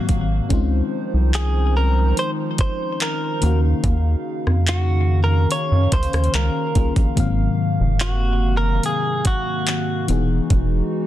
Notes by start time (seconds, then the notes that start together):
Already playing: G#2 C3 D#3 F#3 A#3 C4 F5
0.09 G#1, kick, closed hi-hat
0.49 C#2 D#3 F3 G#3 C4 C#4 D#4 C5, kick, closed hi-hat
0.54 F4
1.14 C2
1.34 G#4, clap, closed hi-hat
1.77 A#4
2.17 C5, closed hi-hat
2.58 C5, kick, closed hi-hat
3.00 A#4, clap, closed hi-hat
3.41 D#2 C#3 D#3 A#3 C#4 F5, closed hi-hat
3.45 F#4
3.84 D#2, kick, closed hi-hat
4.47 F2, cross-stick
4.67 F#4, clap, closed hi-hat
5.09 C#4
5.24 A#4
5.51 C#5, closed hi-hat
5.72 F#2
5.92 C#2 C5, kick, closed hi-hat
6.03 closed hi-hat
6.13 D#2, cross-stick, closed hi-hat
6.24 closed hi-hat
6.34 C#2 A#4, clap, closed hi-hat
6.75 C2 D#3 A#3 C#4 F4 G#4, kick, closed hi-hat
6.96 A#1, kick, closed hi-hat
7.15 G#1 G#2 C3 D#3 F#3 A#3 C4, kick, closed hi-hat
7.20 F5
7.80 F#1
8.00 F#4, clap, closed hi-hat
8.57 A#4
8.83 G#4, closed hi-hat
9.25 F#4, kick, closed hi-hat
9.67 clap, closed hi-hat
10.07 E1 E3 G#3 B3 D#4 F#4, closed hi-hat
10.12 G#4
10.50 E1, kick, closed hi-hat